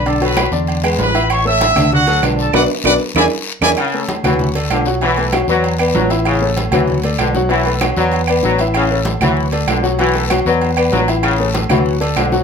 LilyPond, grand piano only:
\new Staff \with { instrumentName = "Grand piano" } { \time 4/4 \key a \major \tempo 4 = 193 <d d' d''>8 <fis fis' a'>4 <d d' d''>4 <gis gis' b'>4 <e e' e''>8~ | <e e' e''>8 <a a' cis''>4 <d d' d''>4 <fis fis' a'>8 <d d' d''>4 | <b d' fis'>8 r8 <b d' fis'>8 r8 <d' e' gis'>8 r4 <d' e' gis'>8 | r8 <a a' cis''>4 <fis fis' fis''>4 <a a' d''>4 <fis fis' fis''>8 |
<fis fis' fis''>8 <a a' b'>8 <fis fis' fis''>8 <b b' d''>4 <b b' d''>4 <e e' e''>8~ | <e e' e''>8 <a a' cis''>4 <fis fis' fis''>4 <a a' d''>4 <fis fis' fis''>8 | <fis fis' fis''>8 <a a' b'>8 <fis fis' fis''>8 <b b' d''>4 <b b' d''>4 <e e' e''>8~ | <e e' e''>8 <a a' cis''>4 <fis fis' fis''>4 <a a' d''>4 <fis fis' fis''>8 |
<fis fis' fis''>8 <a a' b'>8 <fis fis' fis''>8 <b b' d''>4 <b b' d''>4 <e e' e''>8~ | <e e' e''>8 <a a' cis''>4 <fis fis' fis''>4 <a a' d''>4 <fis fis' fis''>8 | }